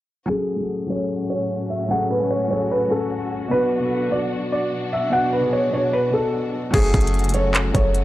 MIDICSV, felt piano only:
0, 0, Header, 1, 2, 480
1, 0, Start_track
1, 0, Key_signature, 3, "minor"
1, 0, Tempo, 402685
1, 352, Time_signature, 4, 2, 24, 8
1, 9588, End_track
2, 0, Start_track
2, 0, Title_t, "Felt piano"
2, 0, Program_c, 0, 0
2, 350, Note_on_c, 0, 68, 109
2, 1028, Note_off_c, 0, 68, 0
2, 1075, Note_on_c, 0, 73, 81
2, 1292, Note_off_c, 0, 73, 0
2, 1549, Note_on_c, 0, 73, 77
2, 2001, Note_off_c, 0, 73, 0
2, 2025, Note_on_c, 0, 76, 68
2, 2247, Note_off_c, 0, 76, 0
2, 2273, Note_on_c, 0, 78, 96
2, 2491, Note_off_c, 0, 78, 0
2, 2509, Note_on_c, 0, 71, 84
2, 2730, Note_off_c, 0, 71, 0
2, 2749, Note_on_c, 0, 73, 77
2, 2969, Note_off_c, 0, 73, 0
2, 2987, Note_on_c, 0, 73, 78
2, 3208, Note_off_c, 0, 73, 0
2, 3235, Note_on_c, 0, 71, 90
2, 3453, Note_off_c, 0, 71, 0
2, 3475, Note_on_c, 0, 69, 75
2, 4150, Note_off_c, 0, 69, 0
2, 4188, Note_on_c, 0, 71, 116
2, 4867, Note_off_c, 0, 71, 0
2, 4908, Note_on_c, 0, 74, 78
2, 5129, Note_off_c, 0, 74, 0
2, 5392, Note_on_c, 0, 74, 79
2, 5843, Note_off_c, 0, 74, 0
2, 5874, Note_on_c, 0, 76, 75
2, 6092, Note_off_c, 0, 76, 0
2, 6110, Note_on_c, 0, 78, 92
2, 6330, Note_off_c, 0, 78, 0
2, 6352, Note_on_c, 0, 71, 86
2, 6571, Note_off_c, 0, 71, 0
2, 6590, Note_on_c, 0, 73, 79
2, 6810, Note_off_c, 0, 73, 0
2, 6834, Note_on_c, 0, 73, 80
2, 7052, Note_off_c, 0, 73, 0
2, 7071, Note_on_c, 0, 71, 93
2, 7290, Note_off_c, 0, 71, 0
2, 7314, Note_on_c, 0, 69, 75
2, 7990, Note_off_c, 0, 69, 0
2, 8029, Note_on_c, 0, 68, 110
2, 8707, Note_off_c, 0, 68, 0
2, 8754, Note_on_c, 0, 73, 88
2, 8972, Note_off_c, 0, 73, 0
2, 9229, Note_on_c, 0, 73, 84
2, 9588, Note_off_c, 0, 73, 0
2, 9588, End_track
0, 0, End_of_file